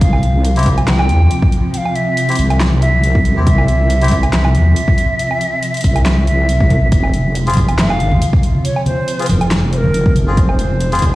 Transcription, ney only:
0.02 F5
0.88 G5
1.74 F5 G5
1.95 E5
2.82 E5
3.47 E5
4.33 E5
6.27 E5
6.92 E5
7.78 E5
7.89 F5
8.65 C#5
8.86 C5
9.73 C5
9.78 A#4
10.37 C#5
10.42 C5

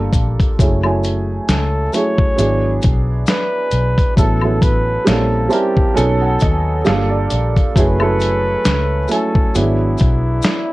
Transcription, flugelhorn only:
Already playing: A4
1.50 A4
1.95 C#5
3.29 B4
4.18 A4
4.63 B4
5.08 A4
5.53 G4
5.97 A4
7.78 B4
9.12 A4
9.57 E4

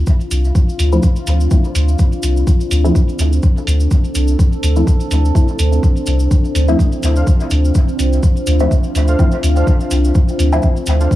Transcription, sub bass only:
0.31 C2
0.79 D2
1.27 D2
1.75 D2
2.23 C2
2.71 D2
3.19 D2
3.67 D2
4.15 C2
4.63 D2
5.11 D2
5.59 D2
6.07 C2
6.55 D2
7.03 D2
7.51 D2
7.99 C2
8.47 D2
8.95 D2
9.43 D2
9.91 C2
10.39 D2
10.87 D2

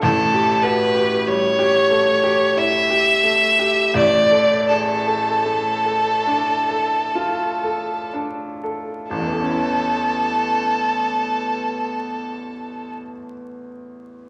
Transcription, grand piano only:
0.02 A1 A2
0.33 G4
0.64 F#4
0.95 G4
1.27 G3
1.59 G4
1.91 A3
2.24 G4
2.57 E4
2.90 G4
3.23 A3
3.59 G4
3.94 A1 A2
4.31 A4
4.69 G#4
5.07 A4
5.45 A3
5.85 A4
6.27 D4
6.70 A4
7.15 F4
7.64 A4
8.13 D4
8.64 A4
9.10 A1
9.19 E2
9.26 E3
9.34 A3
9.42 C#4
9.50 E4

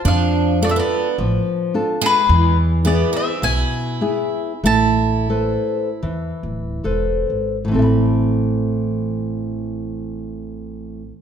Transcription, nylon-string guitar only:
0.05 F3
0.62 D4 F4 A4
1.19 F3
1.74 D4 F4 A4
2.30 E3
2.85 B3 E4 G#4
3.42 B2
4.01 B3 E4 G#4
4.64 A3
5.30 A4 B4 C5
6.03 E3
6.84 A4 B4 C5
7.65 A2 E3
7.72 C4 A4
7.79 E5 B5

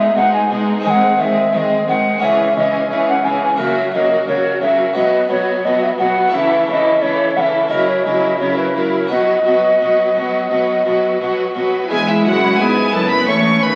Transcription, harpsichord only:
Already playing: B2 G#3 D#4 G#4
0.17 B2
0.51 B2
0.80 G#3 C4 G#4
0.85 D#3
1.18 D#3
1.53 D#3
1.88 D#3
2.18 G#3 C#4 G#4
2.23 C#3
2.58 C#3
2.91 C#3
3.25 C#3
3.56 C#3 F#4 A#4
3.93 C#3
4.28 C#3
4.61 C#3
4.93 B2 F#4 B4
5.29 B2
5.65 B2
5.98 B2
6.28 A3 E4 A4
6.33 C#3
6.67 C#3
7.01 C#3
7.37 C#3
7.68 C#3 E4 A#4
8.06 C#3
8.40 C#3
8.76 C#3
9.07 B2 F#4 B4
9.46 B2
9.80 B2
10.15 B2
10.51 B2
10.86 B2
11.22 B2
11.55 B2
11.90 E2 G#3 E4 B4
12.25 F#2
12.59 G#2
12.92 F#2
13.28 E2 A3 E4 A4
13.62 D#2

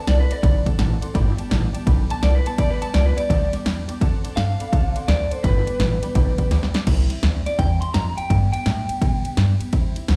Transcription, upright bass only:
0.08 C2
0.31 muted upright bass stroke
0.43 B1
0.66 muted upright bass stroke
0.79 A1
1.03 muted upright bass stroke
1.15 G1
1.39 muted upright bass stroke
1.51 A1
1.74 muted upright bass stroke
1.87 B1
2.10 muted upright bass stroke
2.23 C2
2.46 muted upright bass stroke
2.58 D2
2.82 muted upright bass stroke
2.94 C#2
3.30 D2
3.53 muted upright bass stroke
3.66 E2
3.89 muted upright bass stroke
4.01 F#2
4.24 muted upright bass stroke
4.37 G2
4.60 muted upright bass stroke
4.73 C2
4.96 muted upright bass stroke
5.08 D2
5.31 muted upright bass stroke
5.44 G1
5.67 muted upright bass stroke
5.79 A1
6.03 muted upright bass stroke
6.15 B1
6.38 muted upright bass stroke
6.51 D2
6.74 muted upright bass stroke
6.87 C2
7.10 muted upright bass stroke
7.23 D2
7.46 muted upright bass stroke
7.59 E2
7.82 muted upright bass stroke
7.95 F2
8.18 muted upright bass stroke
8.30 G2
8.53 muted upright bass stroke
8.66 A2
8.89 muted upright bass stroke
9.02 B2
9.25 muted upright bass stroke
9.37 G2
9.60 muted upright bass stroke
9.73 E2
9.96 muted upright bass stroke
10.09 D2

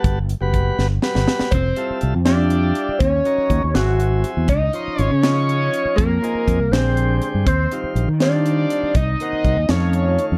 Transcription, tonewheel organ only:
Already playing: G3 B3 F#4 A4
0.41 G3 B3 F#4 B4
1.02 G3 B3 F#4 B4
1.77 G3 E4 F4 A4
2.25 G3 E4 F4 G4
3.25 F#3 C#4 D#4 A#4
3.74 F#3 C4 E4 G#4
4.73 F3 C#4 D#4 C5
5.23 F3 C#4 D#4 C#5
6.22 F3 C4 D#4 G#4
6.72 D3 G#3 C4 G4
7.72 D#3 G3 C4 F4
8.21 D#3 G3 C4 F4
9.20 D#3 A#3 C4 F#4
9.70 D#3 A3 C#4 F4

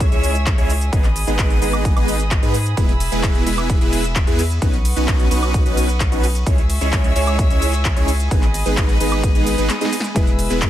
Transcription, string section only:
Already playing: G#4 E5 C#6 E6
0.93 D#5 B5 D#6
2.77 E5 E6
4.62 B4 F#5 C#6 D#6
6.47 G#4 E5 C#6 E6
8.31 D#5 B5 D#6
10.16 G#4 E5 B5 E6

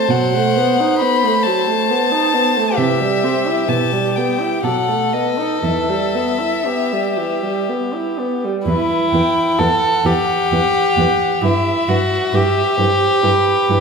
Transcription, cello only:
0.09 B2
2.78 C3
3.69 B2
4.64 B2
5.63 E2
8.67 E2
9.13 E2
9.59 E2
10.05 E2
10.52 E2
10.97 E2
11.42 G2
11.88 G2
12.33 G2
12.78 G2
13.23 G2
13.69 G2

